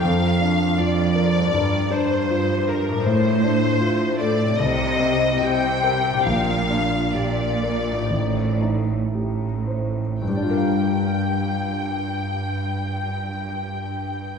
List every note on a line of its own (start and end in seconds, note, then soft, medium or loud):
0.00 1.49 F2 soft
0.00 0.69 F2 soft
0.00 1.51 F2 soft
0.00 1.41 D4 soft
0.00 1.45 F4 soft
0.00 1.50 A#4 soft
0.00 0.76 F5 medium
0.41 1.01 D4 soft
0.78 1.46 F2 soft
0.78 1.40 F4 soft
0.78 1.92 D5 medium
1.15 1.54 A#4 soft
1.37 2.99 G2 soft
1.42 2.91 D4 soft
1.46 2.96 F4 soft
1.51 3.01 G2 soft
1.51 3.06 A#4 soft
1.56 2.22 G2 soft
1.91 2.52 D4 soft
1.91 2.67 C5 medium
2.30 2.97 G2 soft
2.30 2.90 F4 soft
2.68 3.06 A#4 soft
2.89 4.56 A2 soft
2.89 4.58 D4 soft
2.97 4.60 F4 soft
3.02 4.62 A4 soft
3.02 4.20 C5 medium
3.06 3.72 A2 soft
3.06 4.57 A2 soft
3.44 4.05 D4 soft
3.81 4.51 A2 soft
3.81 4.44 F4 soft
4.19 4.60 A4 soft
4.19 4.59 D5 medium
4.43 6.21 C3 soft
4.47 6.23 C4 soft
4.52 6.17 G4 soft
4.56 6.22 C2 soft
4.56 6.21 A#4 soft
4.56 5.42 D#5 medium
4.61 5.33 C3 medium
5.00 5.66 C4 soft
5.41 6.16 C3 soft
5.41 6.09 G4 soft
5.41 6.25 G5 medium
5.83 6.26 A#4 soft
6.09 8.05 A#2 soft
6.14 8.07 D4 soft
6.18 7.99 G4 soft
6.23 8.05 A#1 soft
6.23 7.03 A#2 soft
6.23 8.11 A#4 soft
6.23 7.14 F5 medium
6.70 7.42 D4 soft
7.14 7.97 A#2 soft
7.14 7.90 G4 soft
7.14 8.60 D5 medium
7.63 8.10 A#4 soft
7.91 10.17 A2 soft
7.97 10.19 D#4 soft
8.01 11.91 G4 soft
8.05 10.24 C5 soft
8.10 10.18 A1 soft
8.10 9.00 A2 soft
8.62 9.45 D#4 soft
9.12 10.09 A2 soft
9.12 10.01 G4 soft
9.67 10.22 C5 soft
10.21 14.38 G2 soft
10.21 14.38 G5 soft
10.28 14.38 G3 soft
10.35 14.38 D4 soft
10.42 14.38 F4 soft
10.49 14.38 A#4 soft
10.56 14.38 F5 soft